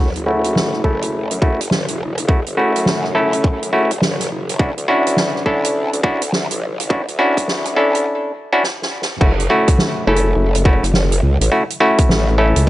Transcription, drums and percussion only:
0.02 snare
0.07 snare
0.11 snare
0.16 closed hi-hat
0.44 cross-stick, closed hi-hat
0.56 snare
0.73 cross-stick
0.84 kick
1.02 closed hi-hat
1.31 closed hi-hat
1.42 kick
1.61 closed hi-hat
1.71 snare
1.88 closed hi-hat
2.18 closed hi-hat
2.29 kick
2.46 closed hi-hat
2.76 closed hi-hat
2.86 snare
3.04 cross-stick
3.33 closed hi-hat
3.44 kick
3.63 closed hi-hat
3.91 closed hi-hat
4.02 snare
4.20 snare, closed hi-hat
4.49 cross-stick, closed hi-hat
4.59 kick
4.78 closed hi-hat
5.07 cross-stick, closed hi-hat
5.17 snare
5.36 cross-stick
5.46 kick
5.65 closed hi-hat
5.93 closed hi-hat
6.04 kick
6.22 closed hi-hat
6.33 snare
6.51 closed hi-hat
6.80 closed hi-hat
6.90 kick
7.08 closed hi-hat
7.37 kick, closed hi-hat
7.48 snare
7.65 cross-stick, closed hi-hat
7.95 closed hi-hat
8.63 snare
8.82 snare
9.02 snare
9.20 kick, crash
9.40 closed hi-hat
9.68 kick, closed hi-hat
9.78 snare
10.16 closed hi-hat
10.55 closed hi-hat
10.65 kick
10.83 cross-stick, closed hi-hat
10.94 snare
11.12 closed hi-hat
11.41 closed hi-hat
11.70 closed hi-hat
11.98 kick, closed hi-hat
12.10 snare
12.27 cross-stick
12.56 closed hi-hat

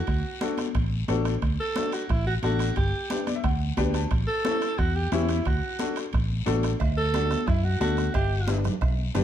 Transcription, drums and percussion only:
0.07 bombo low, bombo rim, high timbale, long guiro
0.41 bombo rim, high conga, high timbale, short guiro
0.57 bombo rim, high conga, high timbale, short guiro
0.75 bombo low, bombo rim, high conga, high timbale, long guiro
0.92 high conga
1.08 bombo rim, high conga, high timbale, low timbale, short guiro
1.25 bombo rim, high timbale, short guiro
1.42 bombo low, bombo rim, high timbale, long guiro
1.76 bombo rim, high conga, high timbale, short guiro
1.92 bombo rim, high timbale, short guiro
2.09 bombo low, bombo rim, high conga, high timbale, long guiro
2.26 high conga
2.43 bombo rim, high conga, high timbale, short guiro
2.59 bombo rim, high timbale, short guiro
2.76 bombo low, bombo rim, high timbale, long guiro
3.10 bombo rim, high conga, high timbale, short guiro
3.27 bombo rim, high conga, high timbale, short guiro
3.44 bombo low, bombo rim, high conga, high timbale, long guiro
3.60 high conga
3.77 bombo low, bombo rim, high conga, high timbale, low timbale, short guiro
3.94 bombo rim, high timbale, short guiro
4.11 bombo low, bombo rim, high timbale, long guiro
4.45 bombo rim, high conga, high timbale, short guiro
4.61 bombo rim, high timbale, short guiro
4.78 bombo low, bombo rim, high conga, high timbale, long guiro
4.95 high conga
5.12 bombo rim, high conga, high timbale, low timbale, short guiro
5.29 bombo rim, high timbale, short guiro
5.45 bombo low, bombo rim, high timbale, long guiro
5.79 bombo rim, high conga, high timbale, short guiro
5.96 bombo rim, high timbale, short guiro
6.13 bombo low, bombo rim, high conga, high timbale, long guiro
6.30 high conga
6.46 bombo rim, high conga, high timbale, low timbale, short guiro
6.63 bombo rim, high timbale, short guiro
6.80 bombo low, bombo rim, cowbell, long guiro
7.14 bombo rim, cowbell, high conga, short guiro
7.30 bombo rim, high conga, short guiro
7.47 bombo low, bombo rim, cowbell, high conga, long guiro
7.64 high conga
7.81 bombo rim, cowbell, high conga, short guiro
7.97 bombo rim, short guiro
8.14 bombo low, bombo rim, cowbell, long guiro
8.47 bombo rim, cowbell, high conga, short guiro
8.64 bombo rim, low conga, short guiro
8.81 bombo low, bombo rim, cowbell, high conga, long guiro
8.98 high conga
9.15 bombo rim, cowbell, high conga, low conga, short guiro

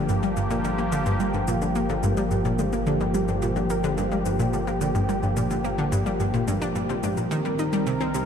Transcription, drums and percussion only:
0.09 cabasa
0.23 cabasa
0.37 cabasa
0.51 cabasa
0.65 cabasa
0.78 cabasa
0.92 cabasa
1.06 cabasa
1.20 cabasa
1.34 cabasa
1.48 cabasa
1.62 cabasa
1.75 cabasa
1.89 cabasa
2.03 high tom, cabasa
2.17 cabasa
2.31 cabasa
2.45 cabasa
2.59 high tom, cabasa
2.73 cabasa
2.87 cabasa
3.00 cabasa
3.14 cabasa
3.28 cabasa
3.42 cabasa
3.56 cabasa
3.70 cabasa
3.84 cabasa
3.98 cabasa
4.12 high tom, cabasa
4.25 cabasa
4.39 cabasa
4.53 cabasa
4.67 cabasa
4.81 cabasa
4.95 cabasa
5.09 cabasa
5.23 cabasa
5.37 cabasa
5.51 cabasa
5.64 cabasa
5.78 cabasa
5.92 cabasa
6.06 cabasa
6.20 cabasa
6.34 cabasa
6.48 high tom, cabasa
6.62 cabasa
6.76 cabasa
6.89 cabasa
7.03 high tom, cabasa
7.17 cabasa
7.31 cabasa
7.45 cabasa
7.59 cabasa
7.73 cabasa
7.87 cabasa
8.01 cabasa
8.14 cabasa

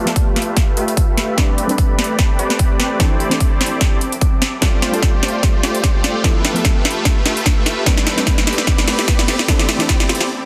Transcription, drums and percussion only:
0.07 snare, closed hi-hat
0.16 kick, closed hi-hat
0.36 snare, closed hi-hat
0.42 closed hi-hat
0.57 kick, snare, closed hi-hat
0.77 closed hi-hat
0.88 closed hi-hat
0.97 kick, closed hi-hat
1.18 snare, closed hi-hat
1.38 kick, snare, closed hi-hat
1.58 closed hi-hat
1.69 closed hi-hat
1.78 kick, closed hi-hat
1.99 snare, closed hi-hat
2.04 closed hi-hat
2.19 kick, snare, closed hi-hat
2.39 closed hi-hat
2.50 snare, closed hi-hat
2.59 kick, closed hi-hat
2.80 snare, closed hi-hat
3.00 kick, snare, closed hi-hat
3.20 closed hi-hat
3.31 snare, closed hi-hat
3.40 kick, closed hi-hat
3.61 snare, closed hi-hat
3.66 closed hi-hat
3.81 kick, snare, closed hi-hat
4.01 closed hi-hat
4.12 closed hi-hat
4.21 kick, closed hi-hat
4.42 snare, closed hi-hat
4.62 kick, snare, closed hi-hat
4.82 snare, closed hi-hat
4.94 closed hi-hat
5.03 kick, snare, closed hi-hat
5.23 snare, closed hi-hat
5.28 closed hi-hat
5.43 kick, snare, closed hi-hat
5.63 snare, closed hi-hat
5.75 closed hi-hat
5.84 kick, snare, closed hi-hat
6.04 snare, closed hi-hat
6.24 kick, snare, closed hi-hat
6.45 snare, closed hi-hat
6.56 closed hi-hat
6.65 kick, snare, closed hi-hat
6.85 snare, closed hi-hat
6.91 closed hi-hat
7.05 kick, snare, closed hi-hat
7.26 snare, closed hi-hat
7.37 closed hi-hat
7.46 kick, snare, closed hi-hat
7.66 snare, closed hi-hat
7.86 kick, snare, closed hi-hat
7.98 snare
8.07 snare, closed hi-hat
8.18 snare, closed hi-hat
8.27 kick, snare, closed hi-hat
8.38 snare
8.47 snare, closed hi-hat
8.53 closed hi-hat
8.58 snare
8.67 kick, snare, closed hi-hat
8.78 snare
8.88 snare, closed hi-hat
8.99 snare, closed hi-hat
9.08 kick, snare, closed hi-hat
9.19 snare
9.28 snare, closed hi-hat
9.39 snare
9.48 kick, snare, closed hi-hat
9.59 snare
9.69 snare, closed hi-hat
9.80 snare, closed hi-hat
9.89 kick, snare, closed hi-hat
10.00 snare
10.09 snare, closed hi-hat
10.15 closed hi-hat
10.21 snare

